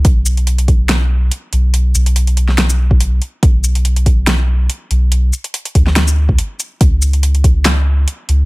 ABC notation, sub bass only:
X:1
M:4/4
L:1/8
Q:"Swing 16ths" 1/4=142
K:Bdor
V:1 name="Sub bass" clef=bass
B,,,6 z B,,,- | B,,, B,,,6 z | B,,,6 z B,,,- | B,,, z2 D,,3 z2 |
C,,6 z C,, |]